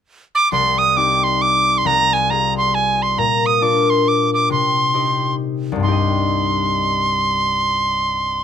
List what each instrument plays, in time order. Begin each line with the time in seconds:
0.35 tin whistle D6
0.52 harp C2, tin whistle C6
0.78 tin whistle D#6
0.96 harp C4 D#4 G4, tin whistle D6
1.24 tin whistle C6
1.42 tin whistle D6
1.78 tin whistle C6
1.85 harp C2, tin whistle A#5
2.13 tin whistle G#5
2.30 harp C4 F4 G#4, tin whistle A#5
2.58 tin whistle C6
2.75 tin whistle G#5
3.02 tin whistle C6
3.18 harp A#2, tin whistle A#5
3.46 tin whistle D#6
3.61 harp D4 F4 A#4, tin whistle D6
3.90 tin whistle C6
4.08 tin whistle D6
4.34 tin whistle D6
4.50 harp C3, tin whistle C6
4.94 harp D#4 G4 C5
5.72 harp C2 G2
5.80 harp C4, tin whistle C6
5.84 harp D#4 G4
5.92 harp D#5